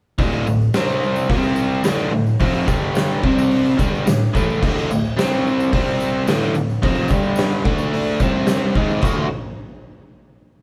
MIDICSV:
0, 0, Header, 1, 3, 480
1, 0, Start_track
1, 0, Tempo, 552995
1, 169, Time_signature, 4, 2, 24, 8
1, 9222, End_track
2, 0, Start_track
2, 0, Title_t, "Overdriven electric guitar"
2, 0, Program_c, 0, 29
2, 158, Note_on_c, 0, 38, 99
2, 167, Note_on_c, 0, 45, 96
2, 169, Note_on_c, 0, 50, 109
2, 393, Note_off_c, 0, 38, 0
2, 394, Note_off_c, 0, 45, 0
2, 403, Note_off_c, 0, 50, 0
2, 403, Note_on_c, 0, 38, 71
2, 405, Note_on_c, 0, 45, 73
2, 600, Note_off_c, 0, 38, 0
2, 601, Note_off_c, 0, 45, 0
2, 644, Note_on_c, 0, 48, 86
2, 652, Note_on_c, 0, 55, 97
2, 663, Note_on_c, 0, 60, 106
2, 1117, Note_off_c, 0, 48, 0
2, 1120, Note_off_c, 0, 55, 0
2, 1128, Note_on_c, 0, 48, 80
2, 1130, Note_on_c, 0, 55, 85
2, 1132, Note_off_c, 0, 60, 0
2, 1142, Note_on_c, 0, 60, 87
2, 1593, Note_off_c, 0, 48, 0
2, 1596, Note_on_c, 0, 38, 96
2, 1604, Note_off_c, 0, 55, 0
2, 1608, Note_off_c, 0, 60, 0
2, 1608, Note_on_c, 0, 45, 110
2, 1612, Note_on_c, 0, 50, 105
2, 1833, Note_off_c, 0, 38, 0
2, 1833, Note_off_c, 0, 45, 0
2, 1843, Note_on_c, 0, 38, 65
2, 1843, Note_on_c, 0, 45, 74
2, 1847, Note_off_c, 0, 50, 0
2, 2042, Note_off_c, 0, 38, 0
2, 2042, Note_off_c, 0, 45, 0
2, 2087, Note_on_c, 0, 41, 97
2, 2092, Note_on_c, 0, 48, 109
2, 2097, Note_on_c, 0, 53, 95
2, 2307, Note_off_c, 0, 41, 0
2, 2310, Note_on_c, 0, 43, 101
2, 2319, Note_off_c, 0, 48, 0
2, 2323, Note_on_c, 0, 50, 109
2, 2325, Note_off_c, 0, 53, 0
2, 2329, Note_on_c, 0, 55, 105
2, 2796, Note_off_c, 0, 43, 0
2, 2802, Note_off_c, 0, 55, 0
2, 2803, Note_off_c, 0, 50, 0
2, 2809, Note_on_c, 0, 48, 93
2, 2812, Note_on_c, 0, 55, 95
2, 2826, Note_on_c, 0, 60, 101
2, 3273, Note_off_c, 0, 48, 0
2, 3277, Note_on_c, 0, 43, 91
2, 3281, Note_off_c, 0, 55, 0
2, 3285, Note_on_c, 0, 50, 110
2, 3294, Note_off_c, 0, 60, 0
2, 3297, Note_on_c, 0, 55, 97
2, 3519, Note_off_c, 0, 43, 0
2, 3522, Note_off_c, 0, 50, 0
2, 3523, Note_on_c, 0, 38, 64
2, 3525, Note_on_c, 0, 45, 77
2, 3529, Note_off_c, 0, 55, 0
2, 3721, Note_off_c, 0, 38, 0
2, 3722, Note_off_c, 0, 45, 0
2, 3762, Note_on_c, 0, 45, 83
2, 3776, Note_on_c, 0, 57, 92
2, 3777, Note_on_c, 0, 52, 91
2, 4001, Note_off_c, 0, 45, 0
2, 4007, Note_on_c, 0, 38, 104
2, 4008, Note_off_c, 0, 52, 0
2, 4008, Note_off_c, 0, 57, 0
2, 4014, Note_on_c, 0, 45, 109
2, 4027, Note_on_c, 0, 50, 116
2, 4243, Note_off_c, 0, 38, 0
2, 4246, Note_off_c, 0, 45, 0
2, 4253, Note_off_c, 0, 50, 0
2, 4255, Note_on_c, 0, 38, 69
2, 4262, Note_on_c, 0, 45, 72
2, 4446, Note_off_c, 0, 38, 0
2, 4449, Note_off_c, 0, 45, 0
2, 4486, Note_on_c, 0, 48, 93
2, 4495, Note_on_c, 0, 55, 102
2, 4504, Note_on_c, 0, 60, 110
2, 4961, Note_off_c, 0, 48, 0
2, 4966, Note_off_c, 0, 55, 0
2, 4969, Note_on_c, 0, 48, 80
2, 4970, Note_off_c, 0, 60, 0
2, 4977, Note_on_c, 0, 55, 94
2, 4983, Note_on_c, 0, 60, 97
2, 5440, Note_off_c, 0, 48, 0
2, 5443, Note_on_c, 0, 38, 94
2, 5446, Note_off_c, 0, 55, 0
2, 5448, Note_off_c, 0, 60, 0
2, 5456, Note_on_c, 0, 45, 97
2, 5460, Note_on_c, 0, 50, 108
2, 5679, Note_off_c, 0, 38, 0
2, 5685, Note_off_c, 0, 45, 0
2, 5687, Note_off_c, 0, 50, 0
2, 5689, Note_on_c, 0, 38, 61
2, 5694, Note_on_c, 0, 45, 69
2, 5880, Note_off_c, 0, 38, 0
2, 5883, Note_off_c, 0, 45, 0
2, 5924, Note_on_c, 0, 41, 104
2, 5939, Note_on_c, 0, 48, 101
2, 5943, Note_on_c, 0, 53, 104
2, 6168, Note_off_c, 0, 41, 0
2, 6168, Note_on_c, 0, 43, 87
2, 6174, Note_off_c, 0, 48, 0
2, 6174, Note_on_c, 0, 50, 88
2, 6187, Note_off_c, 0, 53, 0
2, 6187, Note_on_c, 0, 55, 105
2, 6629, Note_off_c, 0, 50, 0
2, 6639, Note_off_c, 0, 43, 0
2, 6639, Note_on_c, 0, 50, 86
2, 6643, Note_off_c, 0, 55, 0
2, 6647, Note_on_c, 0, 57, 104
2, 6657, Note_on_c, 0, 62, 102
2, 7114, Note_off_c, 0, 50, 0
2, 7115, Note_on_c, 0, 48, 91
2, 7118, Note_off_c, 0, 57, 0
2, 7121, Note_on_c, 0, 55, 95
2, 7123, Note_off_c, 0, 62, 0
2, 7134, Note_on_c, 0, 60, 105
2, 7592, Note_off_c, 0, 48, 0
2, 7595, Note_off_c, 0, 55, 0
2, 7599, Note_on_c, 0, 44, 85
2, 7602, Note_off_c, 0, 60, 0
2, 7609, Note_on_c, 0, 51, 97
2, 7615, Note_on_c, 0, 56, 101
2, 7829, Note_off_c, 0, 44, 0
2, 7833, Note_on_c, 0, 38, 100
2, 7835, Note_off_c, 0, 51, 0
2, 7837, Note_off_c, 0, 56, 0
2, 7839, Note_on_c, 0, 45, 97
2, 7840, Note_on_c, 0, 50, 98
2, 7844, Note_on_c, 0, 57, 105
2, 7847, Note_on_c, 0, 66, 115
2, 8031, Note_off_c, 0, 38, 0
2, 8034, Note_off_c, 0, 45, 0
2, 8034, Note_off_c, 0, 50, 0
2, 8036, Note_off_c, 0, 57, 0
2, 8038, Note_off_c, 0, 66, 0
2, 9222, End_track
3, 0, Start_track
3, 0, Title_t, "Drums"
3, 161, Note_on_c, 9, 36, 119
3, 162, Note_on_c, 9, 54, 27
3, 169, Note_on_c, 9, 46, 64
3, 248, Note_off_c, 9, 36, 0
3, 249, Note_off_c, 9, 54, 0
3, 256, Note_off_c, 9, 46, 0
3, 277, Note_on_c, 9, 54, 28
3, 364, Note_off_c, 9, 54, 0
3, 407, Note_on_c, 9, 54, 75
3, 494, Note_off_c, 9, 54, 0
3, 534, Note_on_c, 9, 54, 30
3, 621, Note_off_c, 9, 54, 0
3, 640, Note_on_c, 9, 46, 60
3, 642, Note_on_c, 9, 54, 86
3, 644, Note_on_c, 9, 38, 108
3, 727, Note_off_c, 9, 46, 0
3, 729, Note_off_c, 9, 54, 0
3, 731, Note_off_c, 9, 38, 0
3, 777, Note_on_c, 9, 54, 27
3, 863, Note_off_c, 9, 54, 0
3, 897, Note_on_c, 9, 54, 26
3, 984, Note_off_c, 9, 54, 0
3, 1006, Note_on_c, 9, 54, 68
3, 1092, Note_off_c, 9, 54, 0
3, 1126, Note_on_c, 9, 36, 105
3, 1133, Note_on_c, 9, 46, 66
3, 1213, Note_off_c, 9, 36, 0
3, 1220, Note_off_c, 9, 46, 0
3, 1244, Note_on_c, 9, 54, 27
3, 1331, Note_off_c, 9, 54, 0
3, 1353, Note_on_c, 9, 54, 83
3, 1440, Note_off_c, 9, 54, 0
3, 1595, Note_on_c, 9, 54, 101
3, 1603, Note_on_c, 9, 46, 66
3, 1607, Note_on_c, 9, 38, 112
3, 1682, Note_off_c, 9, 54, 0
3, 1690, Note_off_c, 9, 46, 0
3, 1694, Note_off_c, 9, 38, 0
3, 1727, Note_on_c, 9, 54, 29
3, 1814, Note_off_c, 9, 54, 0
3, 1966, Note_on_c, 9, 54, 32
3, 2053, Note_off_c, 9, 54, 0
3, 2077, Note_on_c, 9, 54, 29
3, 2088, Note_on_c, 9, 36, 110
3, 2093, Note_on_c, 9, 46, 66
3, 2164, Note_off_c, 9, 54, 0
3, 2175, Note_off_c, 9, 36, 0
3, 2180, Note_off_c, 9, 46, 0
3, 2207, Note_on_c, 9, 54, 29
3, 2294, Note_off_c, 9, 54, 0
3, 2325, Note_on_c, 9, 54, 83
3, 2326, Note_on_c, 9, 36, 108
3, 2411, Note_off_c, 9, 54, 0
3, 2413, Note_off_c, 9, 36, 0
3, 2562, Note_on_c, 9, 54, 102
3, 2571, Note_on_c, 9, 46, 58
3, 2576, Note_on_c, 9, 38, 109
3, 2649, Note_off_c, 9, 54, 0
3, 2658, Note_off_c, 9, 46, 0
3, 2662, Note_off_c, 9, 38, 0
3, 2702, Note_on_c, 9, 54, 30
3, 2789, Note_off_c, 9, 54, 0
3, 2808, Note_on_c, 9, 36, 114
3, 2895, Note_off_c, 9, 36, 0
3, 2937, Note_on_c, 9, 54, 70
3, 3024, Note_off_c, 9, 54, 0
3, 3046, Note_on_c, 9, 46, 57
3, 3133, Note_off_c, 9, 46, 0
3, 3180, Note_on_c, 9, 54, 31
3, 3267, Note_off_c, 9, 54, 0
3, 3291, Note_on_c, 9, 36, 111
3, 3292, Note_on_c, 9, 54, 81
3, 3378, Note_off_c, 9, 36, 0
3, 3379, Note_off_c, 9, 54, 0
3, 3429, Note_on_c, 9, 54, 29
3, 3516, Note_off_c, 9, 54, 0
3, 3532, Note_on_c, 9, 54, 104
3, 3533, Note_on_c, 9, 46, 59
3, 3537, Note_on_c, 9, 38, 113
3, 3619, Note_off_c, 9, 46, 0
3, 3619, Note_off_c, 9, 54, 0
3, 3624, Note_off_c, 9, 38, 0
3, 3666, Note_on_c, 9, 54, 30
3, 3753, Note_off_c, 9, 54, 0
3, 3776, Note_on_c, 9, 36, 108
3, 3789, Note_on_c, 9, 54, 81
3, 3862, Note_off_c, 9, 36, 0
3, 3875, Note_off_c, 9, 54, 0
3, 3908, Note_on_c, 9, 54, 31
3, 3995, Note_off_c, 9, 54, 0
3, 4016, Note_on_c, 9, 36, 115
3, 4021, Note_on_c, 9, 49, 104
3, 4034, Note_on_c, 9, 54, 27
3, 4103, Note_off_c, 9, 36, 0
3, 4108, Note_off_c, 9, 49, 0
3, 4121, Note_off_c, 9, 54, 0
3, 4151, Note_on_c, 9, 54, 31
3, 4238, Note_off_c, 9, 54, 0
3, 4259, Note_on_c, 9, 54, 73
3, 4346, Note_off_c, 9, 54, 0
3, 4380, Note_on_c, 9, 54, 31
3, 4467, Note_off_c, 9, 54, 0
3, 4500, Note_on_c, 9, 46, 61
3, 4502, Note_on_c, 9, 54, 92
3, 4505, Note_on_c, 9, 38, 114
3, 4587, Note_off_c, 9, 46, 0
3, 4588, Note_off_c, 9, 54, 0
3, 4591, Note_off_c, 9, 38, 0
3, 4746, Note_on_c, 9, 54, 28
3, 4832, Note_off_c, 9, 54, 0
3, 4862, Note_on_c, 9, 54, 68
3, 4949, Note_off_c, 9, 54, 0
3, 4975, Note_on_c, 9, 36, 106
3, 4982, Note_on_c, 9, 46, 68
3, 5061, Note_off_c, 9, 36, 0
3, 5069, Note_off_c, 9, 46, 0
3, 5099, Note_on_c, 9, 54, 28
3, 5186, Note_off_c, 9, 54, 0
3, 5210, Note_on_c, 9, 54, 71
3, 5297, Note_off_c, 9, 54, 0
3, 5446, Note_on_c, 9, 54, 98
3, 5452, Note_on_c, 9, 46, 64
3, 5456, Note_on_c, 9, 38, 111
3, 5533, Note_off_c, 9, 54, 0
3, 5539, Note_off_c, 9, 46, 0
3, 5543, Note_off_c, 9, 38, 0
3, 5565, Note_on_c, 9, 54, 29
3, 5652, Note_off_c, 9, 54, 0
3, 5683, Note_on_c, 9, 54, 71
3, 5770, Note_off_c, 9, 54, 0
3, 5812, Note_on_c, 9, 54, 28
3, 5898, Note_off_c, 9, 54, 0
3, 5927, Note_on_c, 9, 54, 25
3, 5930, Note_on_c, 9, 46, 68
3, 5931, Note_on_c, 9, 36, 114
3, 6014, Note_off_c, 9, 54, 0
3, 6017, Note_off_c, 9, 46, 0
3, 6018, Note_off_c, 9, 36, 0
3, 6037, Note_on_c, 9, 54, 29
3, 6124, Note_off_c, 9, 54, 0
3, 6147, Note_on_c, 9, 54, 76
3, 6168, Note_on_c, 9, 36, 107
3, 6234, Note_off_c, 9, 54, 0
3, 6255, Note_off_c, 9, 36, 0
3, 6277, Note_on_c, 9, 54, 29
3, 6364, Note_off_c, 9, 54, 0
3, 6385, Note_on_c, 9, 54, 98
3, 6409, Note_on_c, 9, 46, 60
3, 6413, Note_on_c, 9, 38, 113
3, 6472, Note_off_c, 9, 54, 0
3, 6495, Note_off_c, 9, 46, 0
3, 6500, Note_off_c, 9, 38, 0
3, 6515, Note_on_c, 9, 54, 28
3, 6602, Note_off_c, 9, 54, 0
3, 6644, Note_on_c, 9, 36, 105
3, 6730, Note_off_c, 9, 36, 0
3, 6755, Note_on_c, 9, 54, 67
3, 6842, Note_off_c, 9, 54, 0
3, 6887, Note_on_c, 9, 46, 60
3, 6974, Note_off_c, 9, 46, 0
3, 7008, Note_on_c, 9, 54, 31
3, 7095, Note_off_c, 9, 54, 0
3, 7115, Note_on_c, 9, 54, 78
3, 7120, Note_on_c, 9, 36, 104
3, 7202, Note_off_c, 9, 54, 0
3, 7207, Note_off_c, 9, 36, 0
3, 7347, Note_on_c, 9, 46, 58
3, 7351, Note_on_c, 9, 38, 110
3, 7356, Note_on_c, 9, 54, 109
3, 7434, Note_off_c, 9, 46, 0
3, 7438, Note_off_c, 9, 38, 0
3, 7443, Note_off_c, 9, 54, 0
3, 7599, Note_on_c, 9, 36, 105
3, 7686, Note_off_c, 9, 36, 0
3, 7720, Note_on_c, 9, 54, 35
3, 7807, Note_off_c, 9, 54, 0
3, 7825, Note_on_c, 9, 49, 98
3, 7836, Note_on_c, 9, 36, 116
3, 7853, Note_on_c, 9, 54, 79
3, 7911, Note_off_c, 9, 49, 0
3, 7923, Note_off_c, 9, 36, 0
3, 7940, Note_off_c, 9, 54, 0
3, 9222, End_track
0, 0, End_of_file